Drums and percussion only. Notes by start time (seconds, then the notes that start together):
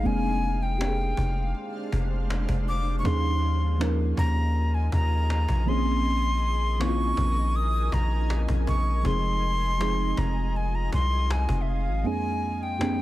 0.05 cajon slap
0.42 cajon slap
0.81 cajon slap
1.17 cajon bass
1.55 cajon slap
1.92 cajon bass
2.30 cajon slap
2.49 cajon bass
3.05 cajon bass
3.43 cajon slap
3.81 cajon slap
4.17 cajon bass
4.55 cajon slap
4.92 cajon bass
5.30 cajon slap
5.49 cajon bass
6.05 cajon slap
6.42 cajon slap
6.81 cajon slap
7.17 cajon bass
7.55 cajon slap
7.92 cajon bass
8.30 cajon slap
8.49 cajon bass
8.67 cajon bass
9.05 cajon bass
9.42 cajon slap
9.81 cajon slap
10.17 cajon bass
10.55 cajon slap
10.93 cajon bass
11.30 cajon slap
11.49 cajon bass
12.05 cajon slap
12.42 cajon slap
12.81 cajon slap